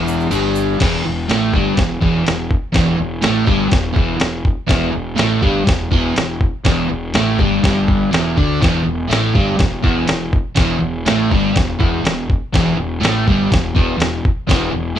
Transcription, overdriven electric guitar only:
Already playing: E2 E3
0.31 G2 G3
0.79 E2 E3
1.05 E2
1.28 A2 A3
1.53 G2 G3
1.77 E2
2.01 E2 E3
2.26 E2
2.72 E2 E3
2.98 E2
3.22 A2 A3
3.46 G2 G3
3.70 E2
3.94 E2 E3
4.18 E2
4.67 E2 E3
4.92 E2
5.16 A2 A3
5.41 G2 G3
5.66 E2
5.91 E2 E3
6.16 E2
6.65 E2 E3
6.89 E2
7.14 A2 A3
7.39 G2 G3
7.62 G2 G3
8.11 E2 E3
8.36 D3 D4
8.61 E2 E3
8.84 E2
9.08 A2 A3
9.34 G2 G3
9.58 E2
9.83 E2 E3
10.07 E2
10.56 E2 E3
10.80 E2
11.06 A2 A3
11.30 G2 G3
11.55 E2
11.79 E2 E3
12.05 E2
12.53 E2 E3
12.77 E2
13.01 A2 A3
13.26 G2 G3
13.51 E2
13.75 E2 E3
13.98 E2
14.47 E2 E3
14.71 E2
14.96 A2

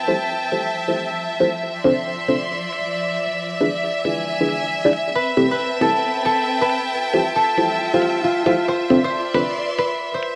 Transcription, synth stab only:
0.08 E4 F4 G4 A4 C5
0.52 E4 F4 G4 A4 C5
0.88 E4 F4 G4 A4 C5
1.40 E4 F4 G4 A4 C5
1.84 C4 D4 F4 A4 C5
2.28 C4 D4 F4 A4 C5
3.61 D4 E4 F4 G#4 B4
4.05 D4 E4 F4 G#4 B4
4.41 D4 E4 F4 G#4 B4
4.85 D4 E4 F4 G#4 D5
5.37 C4 E4 G4 A4 B4
5.81 C4 E4 G4 A4 B4
7.13 E4 F4 G4 A4 C5
7.58 E4 F4 G4 A4 C5
7.94 E4 F4 G4 A4 C5
8.46 E4 F4 G4 A4 C5
8.90 C4 D4 F4 A4 C5
9.34 C4 D4 F4 A4 C5

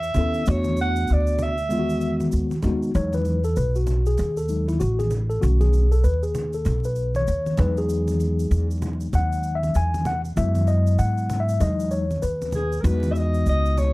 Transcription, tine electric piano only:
0.15 B3 C#4 E4 A4
0.46 A3 B3 D4 F#4
1.69 D#3 G#3 B3 F4
1.79 F#4
2.62 G#3 B3 D#4 F#4
2.94 F#3 G#3 D#4 C#5
3.14 B4
3.45 A4
3.57 B4
3.76 F#4
4.07 G#4
4.37 A4
4.49 F#3 G#3 D#4
4.68 E4
4.80 F#4
4.99 G#4
5.30 A4
5.40 D#3 A3 C#4 F#4
5.61 G#4
5.92 A4
6.04 B4
6.23 G#4
6.54 A4
6.85 B4
7.16 C#5
7.59 F#3 G#3 D#4 B4
7.78 G#4
9.15 F#5
9.55 E5
9.76 G#5
10.07 F#5
10.36 F#3 G#3 B3 E4 E5
10.68 D#5
10.99 F#5
11.40 E5
11.60 F#3 G#3 D#4 D#5
11.91 C#5
12.22 B4
12.83 F#3 B3 D#4 F#4
12.89 G#3

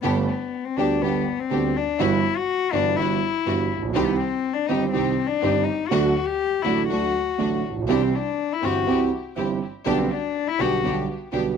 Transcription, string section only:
0.03 B3 D4 G4
0.77 B3 D4 G4
1.02 B3 D4 G4
1.50 B3 D4 G4
1.99 G3 E4 F#4
2.73 G3 E4 F#4
2.97 G3 E4 F#4
3.46 G3 E4 F#4
3.95 C4 D#4 G4
4.68 C4 D#4 G4
4.93 C4 D#4 G4
5.42 C4 D#4 G4
5.91 A3 D4 F#4
6.64 A3 D4 F#4
6.89 A3 D4 F#4
7.38 A3 D4 F#4
7.88 C4 E4 G4
8.62 C4 E4 G4
8.87 C4 E4 G4
9.36 C4 E4 G4
9.86 B3 D4 G4
10.59 B3 D4 G4
10.84 B3 D4 G4
11.32 B3 D4 G4

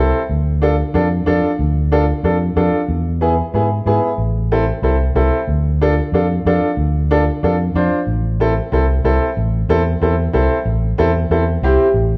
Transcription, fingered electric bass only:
0.30 D2
0.94 F2
1.27 F2
1.59 D2
2.23 F2
2.56 F2
2.88 E2
3.54 G#2
3.86 G#2
4.18 A1
4.82 C2
5.15 C2
5.48 D2
6.12 F2
6.45 F2
6.77 D2
7.43 F2
7.74 F2
8.07 A1
8.72 C2
9.04 C2
9.37 A1
9.69 E2
10.01 E2
10.34 C2
10.65 A1
10.99 E2
11.30 E2
11.62 C2
11.94 A1

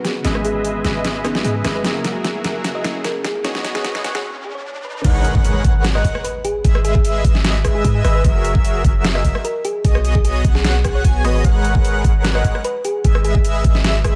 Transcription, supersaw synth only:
0.25 G#3 G#4 B4 D#5 E5
0.85 G#3 G#4 B4 D#5 E5
1.45 G#3 G#4 B4 D#5 E5
1.65 G#3 G#4 B4 D#5 E5
1.85 F#3 F#4 G#4 A#4 E5
2.44 F#3 F#4 G#4 A#4 E5
2.85 F#3 F#4 G#4 A#4 E5
3.44 B3 F#4 G#4 C#5 D#5
4.04 B3 F#4 G#4 C#5 F#5
5.05 G#3 G#4 A#4 B4 C#5 F#5
5.65 G#3 G#4 A#4 B4 C#5 F#5
6.05 G#4 A#4 B4 C#5 F#5
6.65 G#3 G#4 B4 D#5 E5
7.25 G#3 G#4 B4 D#5 E5
7.84 G#3 G#4 B4 D#5 E5
8.04 G#3 G#4 B4 D#5 E5
8.24 F#3 F#4 G#4 A#4 E5
8.84 F#3 F#4
9.25 F#3 F#4 G#4 A#4 E5
9.85 B3 F#4 G#4 C#5 D#5
10.45 G#4
11.05 B3 F#4 G#4 C#5 G#5
11.25 B3 F#4 G#4 C#5 D#5
11.45 G#3 G#4 A#4 B4 C#5 F#5
12.04 G#4 A#4 B4 C#5 F#5
12.45 G#3 G#4 A#4 B4 C#5 F#5
13.05 G#3 G#4 B4 D#5 E5
13.65 G#3 D#5

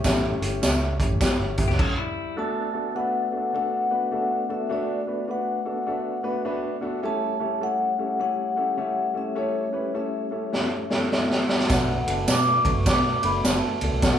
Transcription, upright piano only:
0.04 A3 C#4 E4 G4
0.41 A3 C#4 E4 G4
0.62 A3 C#4 E4 G4
0.99 A3 C#4 E4 G4
1.21 A3 C#4 E4 G4
1.57 A3 C#4 E4 G4
2.36 A3 B3 D4 F#4 A4
2.73 A3 B3 D4 F#4 A4
2.95 A3 B3 D4 F#4 B4
3.32 A3 B3 D4 F#4 A4
3.53 A3 B3 D4 F#4 A4
3.90 A3 B3 D4 F#4 B4
4.11 A3 B3 D4 F#4 A4
4.49 A3 B3 D4 F#4 A4
4.69 A3 B3 D4 F#4 A4
5.07 A3 B3 D4 F#4 B4
5.28 A3 B3 D4 F#4 B4
5.65 A3 B3 D4 F#4 A4
5.86 A3 B3 D4 F#4 A4
6.23 A3 B3 D4 F#4 B4
6.45 A3 B3 D4 F#4 B4
6.81 A3 B3 D4 F#4 A4
7.02 A3 C#4 E4 G4 A4
7.40 A3 C#4 E4 G4 A4
7.60 A3 C#4 E4 G4 A4
7.98 A3 C#4 E4 G4 A4
8.19 A3 C#4 E4 G4 A4
8.56 A3 C#4 E4 G4 A4
8.77 A3 C#4 E4 G4 A4
9.14 A3 C#4 E4 G4 A4
9.35 A3 C#4 E4 G4 A4
9.73 A3 C#4 E4 G4 B4
9.94 A3 C#4 E4 G4 A4
10.31 A3 C#4 E4 G4 A4
10.52 A3 C#4 E4 G4 A4
10.90 A3 C#4 E4 G4 A4
11.11 A3 C#4 E4 G4 A4
11.48 A3 C#4 E4 G4 A4
11.69 A3 B3 D4 F#4 A4
12.06 A3 B3 D4 F#4 A4
12.28 A3 B3 D4 F#4 B4
12.65 A3 B3 D4 F#4 A4
12.86 A3 B3 D4 F#4 A4
13.23 A3 B3 D4 F#4 A4
13.45 A3 B3 D4 F#4 A4
13.82 A3 B3 D4 F#4 A4
14.03 A3 B3 D4 F#4 A4

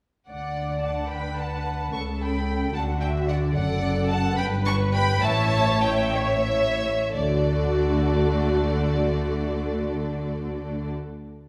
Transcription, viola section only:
0.30 D5
1.12 B4
1.94 A4
2.75 F#4
3.56 A4
4.38 B4
5.24 C#5
6.15 C#5
7.13 A3 F#4

